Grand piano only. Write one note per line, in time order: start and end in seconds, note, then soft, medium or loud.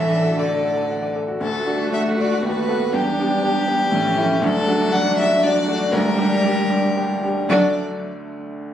0.00 1.38 D2 medium
0.00 0.20 A2 medium
0.11 0.33 D4 medium
0.24 0.46 F#4 medium
0.38 0.59 A4 medium
0.51 0.72 D5 medium
0.65 0.85 F#5 medium
0.77 0.98 A5 medium
0.90 1.11 F#5 medium
1.03 1.24 D5 medium
1.16 1.37 A4 medium
1.28 1.42 F#4 medium
1.41 1.66 D2 medium
1.67 1.89 D4 medium
1.67 1.90 F#4 medium
1.67 1.90 A4 medium
1.91 2.14 D4 medium
1.91 2.15 F#4 medium
1.91 2.15 A4 medium
2.17 2.40 D4 medium
2.17 2.41 F#4 medium
2.17 2.41 A4 medium
2.42 2.68 D#2 medium
2.68 2.91 B3 medium
2.68 2.92 F#4 medium
2.68 2.92 A4 medium
2.93 3.18 E2 medium
3.19 3.41 B3 medium
3.19 3.41 D4 medium
3.19 3.42 G4 medium
3.43 3.66 B3 medium
3.43 3.66 D4 medium
3.43 3.66 G4 medium
3.68 3.91 B3 medium
3.68 3.91 D4 medium
3.68 3.91 G4 medium
3.92 4.17 A2 medium
4.17 4.40 A3 medium
4.17 4.40 C#4 medium
4.17 4.40 E4 medium
4.42 4.66 D2 loud
4.67 4.90 A3 medium
4.67 4.90 D4 medium
4.67 4.90 F#4 medium
4.93 5.15 A3 medium
4.93 5.16 D4 medium
4.93 5.16 F#4 medium
5.19 5.41 A3 medium
5.19 5.41 D4 medium
5.19 5.41 F#4 medium
5.43 5.66 A3 medium
5.43 5.66 D4 medium
5.43 5.66 F#4 medium
5.68 5.91 A3 medium
5.68 5.91 D4 medium
5.68 5.91 F#4 loud
5.92 6.18 D2 loud
6.18 6.42 G3 medium
6.18 6.42 D4 medium
6.18 6.42 G4 loud
6.44 6.68 G3 medium
6.44 6.68 D4 medium
6.44 6.68 G4 medium
6.70 6.94 G3 medium
6.70 6.94 D4 medium
6.70 6.94 G4 medium
6.97 7.21 G3 medium
6.97 7.21 D4 medium
6.97 7.21 G4 medium
7.23 7.47 G3 medium
7.23 7.47 D4 medium
7.23 7.48 G4 medium
7.49 7.79 D2 medium
7.49 7.79 D3 loud
7.49 7.79 A3 medium
7.49 7.79 D4 medium
7.49 7.79 F#4 medium
7.49 7.79 D5 medium